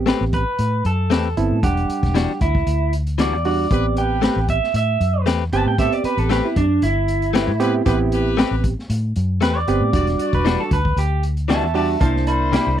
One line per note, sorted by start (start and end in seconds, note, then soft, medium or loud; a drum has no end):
0.00 0.11 A1 medium
0.00 0.42 B3 medium
0.00 0.42 C4 medium
0.00 0.42 G4 medium
0.06 0.23 A3 medium
0.06 0.23 C4 medium
0.06 0.24 G4 medium
0.06 0.24 B4 loud
0.06 snare loud
0.06 closed hi-hat medium
0.21 0.43 A1 medium
0.33 0.84 B4 loud
0.33 kick medium
0.33 closed hi-hat medium
0.59 0.81 A2 medium
0.59 closed hi-hat medium
0.85 1.11 F#2 medium
0.85 1.61 A4 medium
0.85 closed hi-hat medium
1.10 1.33 E2 medium
1.10 1.27 A3 medium
1.10 1.27 C4 medium
1.10 1.28 G4 medium
1.10 1.28 B4 medium
1.10 snare loud
1.10 closed hi-hat medium
1.37 1.49 G1 medium
1.37 1.59 B3 medium
1.37 1.59 C4 medium
1.37 1.59 E4 medium
1.37 closed hi-hat medium
1.52 1.62 A2 medium
1.63 1.85 E1 loud
1.63 2.50 G3 medium
1.63 2.50 D4 medium
1.63 2.39 G4 medium
1.63 2.50 F#5 medium
1.63 kick loud
1.63 closed hi-hat medium
1.77 closed hi-hat soft
1.89 muted fingered electric bass stroke soft
1.89 closed hi-hat medium
2.03 2.25 E1 medium
2.03 kick medium
2.03 snare soft
2.03 closed hi-hat soft
2.14 2.31 E3 medium
2.14 2.31 G3 medium
2.14 2.32 D4 medium
2.14 2.32 F#4 medium
2.14 snare loud
2.14 closed hi-hat medium
2.41 2.63 D2 medium
2.41 2.92 E4 loud
2.41 kick medium
2.41 closed hi-hat medium
2.55 kick medium
2.67 3.33 D2 medium
2.67 closed hi-hat medium
2.93 closed hi-hat medium
3.07 closed hi-hat soft
3.18 3.35 E3 medium
3.18 3.35 G3 medium
3.18 3.35 D4 medium
3.18 3.36 F#4 medium
3.18 3.45 D5 medium
3.18 snare loud
3.18 closed hi-hat medium
3.33 3.65 E2 medium
3.45 3.67 G3 medium
3.45 3.67 D4 medium
3.45 3.67 F#4 medium
3.45 3.96 D5 medium
3.45 open hi-hat medium
3.71 4.27 A1 medium
3.71 4.58 B3 medium
3.71 3.84 C4 medium
3.71 4.58 C4 medium
3.71 3.85 G4 medium
3.71 4.58 G4 medium
3.71 3.85 B4 medium
3.71 kick loud
3.71 closed hi-hat medium
3.97 4.49 G4 medium
3.97 4.49 B4 medium
3.97 4.48 G5 medium
3.97 closed hi-hat medium
4.22 4.38 A3 medium
4.22 4.39 C4 medium
4.22 4.39 G4 medium
4.22 4.40 B4 medium
4.22 snare loud
4.22 closed hi-hat medium
4.36 4.59 A1 medium
4.49 4.74 E5 loud
4.49 kick medium
4.49 closed hi-hat medium
4.64 snare soft
4.74 4.96 A2 medium
4.74 5.26 E5 medium
4.74 closed hi-hat medium
5.00 5.26 F#2 loud
5.00 closed hi-hat medium
5.26 5.49 E2 medium
5.26 5.42 A3 medium
5.26 5.43 C4 medium
5.26 5.43 G4 medium
5.26 5.44 B4 medium
5.26 snare loud
5.26 closed hi-hat medium
5.52 5.64 G1 medium
5.52 5.74 B3 medium
5.52 5.66 C4 medium
5.52 5.74 C4 medium
5.52 5.66 G4 medium
5.52 5.74 G4 medium
5.52 5.66 B4 medium
5.52 5.66 A5 loud
5.52 closed hi-hat medium
5.65 5.88 A2 medium
5.65 5.79 G5 medium
5.78 6.65 B3 medium
5.78 5.92 C4 medium
5.78 6.65 C4 medium
5.78 5.92 G4 medium
5.78 6.65 G4 medium
5.78 5.93 A4 medium
5.78 5.92 E5 loud
5.78 kick loud
5.78 closed hi-hat medium
5.92 6.04 D5 medium
5.92 closed hi-hat soft
6.04 6.56 G4 medium
6.04 6.19 B4 loud
6.04 6.57 B4 medium
6.04 muted fingered electric bass stroke soft
6.04 closed hi-hat medium
6.17 6.40 A1 medium
6.17 6.30 A4 medium
6.17 closed hi-hat soft
6.30 6.46 A3 medium
6.30 6.47 C4 medium
6.30 6.45 G4 loud
6.30 6.47 G4 medium
6.30 6.47 B4 medium
6.30 snare loud
6.30 closed hi-hat medium
6.45 6.56 E4 loud
6.56 6.78 F#2 medium
6.56 6.82 D4 loud
6.56 kick medium
6.56 closed hi-hat medium
6.82 7.49 G1 medium
6.82 8.34 E4 loud
6.82 closed hi-hat medium
7.08 closed hi-hat medium
7.22 closed hi-hat soft
7.34 7.50 A3 medium
7.34 7.50 C4 medium
7.34 7.51 G4 medium
7.34 7.51 B4 medium
7.34 snare loud
7.34 closed hi-hat medium
7.48 7.80 A2 loud
7.59 7.81 B3 medium
7.59 7.73 C4 medium
7.59 7.82 C4 medium
7.59 7.73 G4 medium
7.59 7.81 G4 loud
7.59 7.74 B4 medium
7.59 closed hi-hat medium
7.84 8.42 A1 medium
7.84 8.72 B3 medium
7.84 7.99 C4 medium
7.84 8.72 C4 medium
7.84 7.99 G4 medium
7.84 8.72 G4 medium
7.84 8.00 B4 medium
7.84 kick loud
7.84 closed hi-hat medium
8.12 8.64 G4 medium
8.12 8.64 B4 loud
8.12 closed hi-hat medium
8.37 8.54 A3 medium
8.37 8.54 C4 medium
8.37 8.54 G4 medium
8.37 8.55 B4 loud
8.37 snare loud
8.37 closed hi-hat medium
8.51 8.73 A1 medium
8.64 kick medium
8.64 closed hi-hat medium
8.79 snare soft
8.90 9.12 A2 medium
8.90 closed hi-hat medium
9.16 9.42 F#2 medium
9.16 closed hi-hat medium
9.41 9.64 E2 medium
9.41 9.57 A3 medium
9.41 9.58 C4 medium
9.41 9.58 G4 medium
9.41 9.57 B4 loud
9.41 9.59 B4 medium
9.41 snare loud
9.41 closed hi-hat medium
9.57 10.31 D5 medium
9.67 9.79 G1 medium
9.67 9.89 B3 medium
9.67 9.81 C4 medium
9.67 9.89 C4 medium
9.67 9.81 G4 medium
9.67 9.90 G4 medium
9.67 9.81 B4 medium
9.67 closed hi-hat medium
9.81 9.92 A2 medium
9.93 10.16 E1 loud
9.93 10.79 G3 medium
9.93 10.79 D4 medium
9.93 10.07 F#4 medium
9.93 10.79 F#4 medium
9.93 10.07 G4 medium
9.93 10.08 D5 medium
9.93 kick loud
9.93 closed hi-hat medium
10.07 snare soft
10.07 closed hi-hat soft
10.18 10.71 F#4 medium
10.18 10.72 D5 medium
10.18 closed hi-hat medium
10.33 10.55 E1 medium
10.33 10.59 B4 medium
10.33 kick medium
10.33 closed hi-hat soft
10.45 10.61 E3 medium
10.45 10.62 G3 medium
10.45 10.62 D4 medium
10.45 10.62 F#4 medium
10.45 snare loud
10.45 closed hi-hat medium
10.60 10.71 A4 medium
10.71 10.93 D2 medium
10.71 10.97 B4 loud
10.71 kick medium
10.71 closed hi-hat medium
10.85 kick medium
10.96 11.63 D2 medium
10.96 11.23 G4 medium
10.96 closed hi-hat medium
11.23 closed hi-hat medium
11.37 closed hi-hat soft
11.48 11.65 E3 medium
11.48 11.65 G3 medium
11.48 11.66 D4 medium
11.48 11.66 F#4 medium
11.48 11.74 E5 medium
11.48 11.74 A5 medium
11.48 snare medium
11.48 closed hi-hat medium
11.63 11.95 E2 medium
11.74 11.96 G3 medium
11.74 11.97 D4 medium
11.74 11.88 F#4 medium
11.74 11.97 F#4 medium
11.74 11.88 G4 medium
11.74 11.89 D5 medium
11.74 11.99 E5 medium
11.74 12.00 A5 loud
11.74 open hi-hat medium
12.00 12.57 C2 medium
12.00 12.80 A#3 medium
12.00 12.80 D4 medium
12.00 12.14 E4 medium
12.00 12.80 E4 medium
12.00 12.14 A#4 medium
12.00 12.25 C5 medium
12.00 12.15 C5 medium
12.00 12.26 A5 medium
12.00 kick loud
12.00 closed hi-hat medium
12.16 snare soft
12.26 12.78 E4 medium
12.26 12.79 A#4 medium
12.26 12.79 C5 medium
12.26 12.51 D5 medium
12.26 12.52 B5 medium
12.26 closed hi-hat medium
12.52 12.69 C3 medium
12.52 12.69 A#3 medium
12.52 12.69 E4 medium
12.52 12.70 G4 medium
12.52 12.77 D5 medium
12.52 12.78 B5 loud
12.52 snare loud
12.52 closed hi-hat medium
12.67 12.80 C2 medium